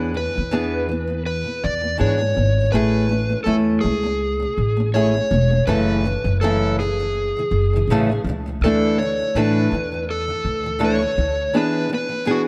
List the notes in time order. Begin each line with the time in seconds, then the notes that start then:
Already playing: E2 E3 B3 D4 G#4
0.14 E3 B3 B4
0.35 E2 E3 B3
0.51 E3 B3 D4 G#4
0.89 E3 B3
1.08 E3 B3
1.26 B4
1.44 E3 B3
1.64 E2 D5
1.81 E3 B3
1.98 G#2 E3 B3 D4 G#4 C#5
2.19 E3 B3
2.35 G#1 E3 B3
2.72 A1 A3 C#4 E4 G#4 B4
3.09 A3 C#4
3.30 A3 C#4
3.44 E2 A3 C#4 E4 A4
3.81 C#2 A3 G#4
3.86 C#4
4.03 A3 C#4
4.40 A3 C#4
4.58 A1
4.77 A3 C#4
4.94 A3 C#4 E4 G#4 C#5
5.14 A3 C#4
5.31 E1 A3 C#4
5.51 A3 C#4
5.67 F#1 F#2 C#3 E3 A3 C#4 A4 B4
6.04 F#2 C#3 E3
6.24 F#1 F#2 C#3 E3
6.41 F#2 C#3 E3 A3 C#4 A4
6.79 F#2 C#3 G#4
7.00 F#2 C#3 E3
7.37 F#2 C#3 E3
7.51 F#1
7.73 F#2 C#3 E3
7.87 A1 F#2 C#3 E3 A3
7.92 C#4 A4
8.09 F#2 C#3 E3
8.24 C#2 F#2
8.29 C#3 E3
8.46 F#2 C#3 E3
8.61 D2 D3 E3 A3 D4 A4
8.98 D3 C#5
9.03 E3
9.19 D3 E3
9.35 A2 D3 E3 A3 D4 A4 B4
9.71 E2 D3 E3
9.92 D3 E3
10.10 A4
10.28 D3 E3
10.45 D2
10.63 D3 E3
10.79 D3 E3 A3 D4 A4
10.84 C#5
11.00 D3 E3
11.16 D2 D3 E3
11.53 E3 B3 D4 G#4 B4
11.89 E3 B3
11.94 B4
12.09 E3 B3
12.25 E3 B3 D4 G#4
12.31 F#4